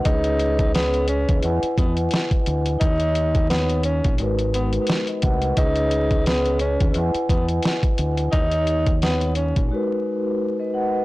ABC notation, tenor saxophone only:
X:1
M:4/4
L:1/16
Q:"Swing 16ths" 1/4=87
K:G#m
V:1 name="Tenor saxophone"
D4 B,2 C2 z2 B, z4 z | D4 B,2 C2 z2 B, z4 z | D4 B,2 C2 z2 B, z4 z | D4 B,2 C2 z8 |]